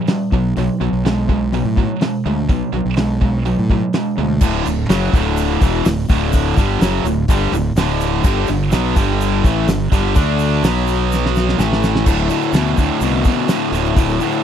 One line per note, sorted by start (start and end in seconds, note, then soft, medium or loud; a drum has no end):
0.07 0.30 A#2 medium
0.07 0.30 G3 medium
0.07 snare loud
0.07 open hi-hat medium
0.32 0.55 B1 medium
0.32 0.54 B2 medium
0.32 0.54 F#3 medium
0.32 kick medium
0.57 0.68 B1 loud
0.57 0.78 B2 medium
0.57 0.79 F#3 medium
0.57 open hi-hat soft
0.80 0.92 B1 medium
0.80 1.02 B2 medium
0.80 1.02 F#3 medium
0.92 1.61 B1 medium
1.05 1.27 B2 medium
1.05 1.27 G#3 medium
1.05 snare loud
1.05 open hi-hat soft
1.28 1.50 B2 medium
1.28 1.51 G#3 medium
1.28 kick medium
1.52 1.74 B2 medium
1.52 1.75 F#3 medium
1.52 open hi-hat soft
1.65 1.87 A2 medium
1.76 1.99 B2 medium
1.76 1.99 F#3 medium
1.76 kick medium
2.01 2.23 B2 medium
2.01 2.23 G#3 medium
2.01 snare loud
2.01 open hi-hat soft
2.26 2.48 D2 medium
2.26 2.47 B2 medium
2.26 2.47 G#3 medium
2.49 2.61 B1 medium
2.49 2.72 B2 medium
2.49 2.72 F#3 medium
2.49 kick loud
2.49 open hi-hat soft
2.73 2.84 B1 medium
2.73 2.96 B2 medium
2.73 2.96 F#3 medium
2.85 3.54 B1 medium
2.97 3.20 B2 medium
2.97 3.20 G#3 medium
2.97 snare loud
2.97 open hi-hat medium
3.22 3.44 B2 medium
3.22 3.44 G#3 medium
3.22 kick medium
3.46 3.68 B2 medium
3.46 3.68 F#3 medium
3.46 open hi-hat soft
3.59 3.80 A2 medium
3.70 3.92 B2 medium
3.70 3.92 F#3 medium
3.70 kick medium
3.93 4.16 B2 medium
3.93 4.16 G#3 medium
3.93 snare loud
3.93 open hi-hat medium
4.17 4.40 D2 medium
4.17 4.39 B2 medium
4.17 4.39 G#3 medium
4.41 4.64 D1 medium
4.41 4.64 D2 medium
4.41 4.64 A2 loud
4.41 4.66 D3 loud
4.41 kick loud
4.41 crash loud
4.41 shaker medium
4.65 4.88 D1 medium
4.65 4.84 D2 medium
4.65 4.85 A2 medium
4.65 open hi-hat medium
4.65 shaker medium
4.89 5.12 F#1 medium
4.89 5.12 F#2 medium
4.89 5.13 C#3 medium
4.89 5.13 F#3 loud
4.89 snare loud
4.89 open hi-hat medium
4.89 shaker medium
5.12 5.58 D1 medium
5.12 5.60 D2 medium
5.12 5.61 A2 medium
5.12 5.61 D3 loud
5.12 kick loud
5.12 open hi-hat medium
5.12 shaker medium
5.37 open hi-hat medium
5.37 shaker medium
5.61 5.84 E1 medium
5.61 5.85 E2 medium
5.61 5.85 B2 loud
5.61 5.85 E3 medium
5.61 kick loud
5.61 open hi-hat medium
5.61 shaker medium
5.85 6.08 D1 medium
5.85 6.05 D2 medium
5.85 6.05 A2 medium
5.85 snare loud
5.85 open hi-hat medium
5.85 shaker medium
6.09 6.54 D1 loud
6.09 6.56 D2 medium
6.09 6.57 A2 medium
6.09 6.57 D3 loud
6.09 kick loud
6.09 open hi-hat medium
6.09 shaker medium
6.33 kick loud
6.33 open hi-hat medium
6.33 shaker medium
6.57 6.79 G1 medium
6.57 6.81 G2 medium
6.57 6.81 D3 medium
6.57 6.82 G3 loud
6.57 kick loud
6.57 open hi-hat medium
6.57 shaker medium
6.81 7.03 F#1 medium
6.81 7.05 F#2 medium
6.81 7.05 C#3 loud
6.81 7.05 F#3 loud
6.81 snare loud
6.81 open hi-hat medium
6.81 shaker medium
7.04 7.27 D1 medium
7.04 7.25 D2 medium
7.04 7.25 A2 medium
7.04 open hi-hat medium
7.04 shaker medium
7.28 7.51 G1 medium
7.28 7.52 G2 medium
7.28 7.52 D3 medium
7.28 7.53 G3 loud
7.28 kick loud
7.28 open hi-hat medium
7.28 shaker loud
7.52 7.74 D1 medium
7.52 7.72 D2 medium
7.52 7.72 A2 medium
7.52 open hi-hat medium
7.52 shaker medium
7.75 8.20 D1 medium
7.75 8.24 D2 medium
7.75 8.25 A2 medium
7.75 8.24 D3 loud
7.75 snare loud
7.75 open hi-hat medium
7.75 shaker medium
8.01 open hi-hat medium
8.01 shaker medium
8.24 8.47 G1 loud
8.24 8.47 G2 loud
8.24 8.48 D3 loud
8.24 8.48 G3 loud
8.24 kick loud
8.24 crash medium
8.24 shaker medium
8.47 8.71 G1 medium
8.47 8.68 G2 medium
8.47 8.68 D3 medium
8.47 open hi-hat medium
8.47 shaker medium
8.72 8.94 B1 medium
8.72 8.95 B2 loud
8.72 8.96 F#3 medium
8.72 8.96 B3 loud
8.72 snare loud
8.72 open hi-hat medium
8.72 shaker loud
8.96 9.41 G1 loud
8.96 9.43 G2 loud
8.96 9.43 D3 loud
8.96 9.44 G3 medium
8.96 kick loud
8.96 open hi-hat medium
8.96 shaker medium
9.21 open hi-hat medium
9.21 shaker medium
9.44 9.66 A1 medium
9.44 9.67 A2 medium
9.44 9.67 E3 loud
9.44 9.68 A3 loud
9.44 kick loud
9.44 open hi-hat medium
9.44 shaker medium
9.68 9.90 G1 medium
9.68 9.87 G2 medium
9.68 9.87 D3 medium
9.68 snare loud
9.68 open hi-hat medium
9.68 shaker medium
9.92 10.14 G1 medium
9.92 10.15 G2 medium
9.92 10.14 D3 loud
9.92 10.15 G3 medium
9.92 kick loud
9.92 open hi-hat medium
9.92 shaker medium
10.15 10.60 D2 loud
10.15 10.62 D3 loud
10.15 10.63 A3 loud
10.15 10.63 D4 loud
10.15 kick loud
10.15 open hi-hat medium
10.15 shaker medium
10.39 open hi-hat medium
10.39 shaker medium
10.63 11.54 B1 medium
10.63 11.58 B2 medium
10.63 11.58 F#3 loud
10.63 11.59 B3 medium
10.63 snare loud
10.63 open hi-hat medium
10.63 shaker medium
10.88 open hi-hat medium
10.88 shaker medium
11.12 snare medium
11.12 shaker medium
11.26 snare medium
11.36 snare medium
11.36 shaker medium
11.49 snare medium
11.58 12.03 A1 medium
11.58 12.05 A2 medium
11.58 12.05 E3 medium
11.58 12.06 A3 loud
11.58 snare medium
11.58 shaker medium
11.73 snare medium
11.83 snare medium
11.83 shaker medium
11.96 snare medium
12.06 12.29 D1 loud
12.06 12.27 D2 medium
12.06 12.28 A2 medium
12.06 kick loud
12.06 crash loud
12.06 shaker loud
12.18 shaker soft
12.29 12.51 D2 medium
12.29 12.51 A2 medium
12.29 open hi-hat medium
12.29 shaker medium
12.42 shaker soft
12.53 12.75 D2 medium
12.53 12.75 B2 medium
12.53 snare loud
12.53 open hi-hat medium
12.53 shaker loud
12.66 shaker soft
12.77 12.99 D2 medium
12.77 12.89 D2 medium
12.77 12.99 A2 medium
12.77 kick medium
12.77 open hi-hat medium
12.77 shaker medium
13.01 13.23 C2 medium
13.01 13.23 D2 medium
13.01 13.23 B2 medium
13.01 open hi-hat medium
13.01 shaker medium
13.24 13.47 D2 medium
13.24 13.47 B2 medium
13.24 kick medium
13.24 open hi-hat medium
13.24 shaker medium
13.48 13.70 D2 medium
13.48 13.70 A2 medium
13.48 snare loud
13.48 open hi-hat medium
13.48 shaker medium
13.72 13.94 D1 medium
13.72 13.94 D2 medium
13.72 13.95 A2 medium
13.72 open hi-hat medium
13.72 shaker medium
13.85 shaker soft
13.96 14.19 D1 loud
13.96 14.18 D2 medium
13.96 14.18 A2 medium
13.96 kick loud
13.96 open hi-hat medium
13.96 shaker medium
14.09 shaker soft
14.20 14.42 D2 medium
14.20 14.42 A2 medium
14.20 open hi-hat medium
14.20 shaker medium
14.32 shaker soft